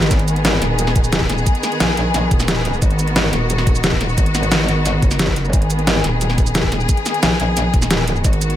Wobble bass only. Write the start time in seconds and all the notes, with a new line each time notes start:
0.11 G#1
0.62 D#1
1.80 A#1
2.31 D#1
2.82 G#1
3.33 D#1
4.18 G#1
5.02 F#1
5.53 G#1
6.04 D#1
7.23 A#1
7.74 D#1
8.25 G#1